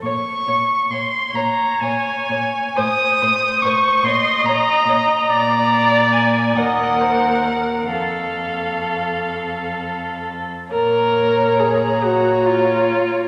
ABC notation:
X:1
M:6/8
L:1/16
Q:3/8=46
K:Bbm
V:1 name="Violin"
d'4 c'2 b2 a4 | e'4 d'2 c'2 b4 | b4 a2 g6 | f8- f2 z2 |
b12 |]
V:2 name="Violin"
d2 d2 d2 d2 d2 d2 | c2 c2 c2 d2 d2 d2 | =d6 B6 | =A8- A3 z |
d6 d6 |]
V:3 name="Viola"
z6 d6 | c6 e6 | =d6 e2 c2 B2 | =A8- A z3 |
B4 A2 G2 F4 |]
V:4 name="Cello" clef=bass
B,,2 B,,2 B,,2 B,,2 B,,2 B,,2 | =A,,2 A,,2 A,,2 B,,2 B,,2 B,,2 | B,,6 E,,6 | F,,8- F,,3 z |
B,,12 |]